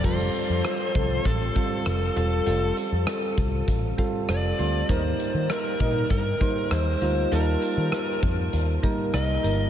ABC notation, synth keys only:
X:1
M:4/4
L:1/16
Q:1/4=99
K:Eblyd
V:1 name="Synth keys"
[G,CFA]6- [G,CFA] z3 [G,CFA]4 [G,CFA]2 | [G,CFA]6- [G,CFA] z3 [G,CFA]4 [G,CFc]2 | [G,B,EB]6- [G,B,EB] z3 [G,B,Ec]4 [G,B,EF]2 | [G,B,Ea]6- [G,B,Ea] z3 [G,B,EB]4 [G,B,EB]2 |]